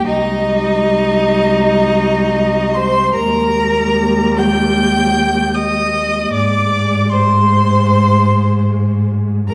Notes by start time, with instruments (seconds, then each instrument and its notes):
0.06 cello C2, viola G3, violin D#4 D#5
2.74 violin C5 C6
3.14 cello D#2, viola G3, violin A#4 A#5
4.37 violin G5 G6
5.54 violin D#5 D#6
6.33 cello G#2, viola G#3, violin D5 D6
7.10 violin C5 C6
9.47 cello F2, viola G#3, violin A#4 A#5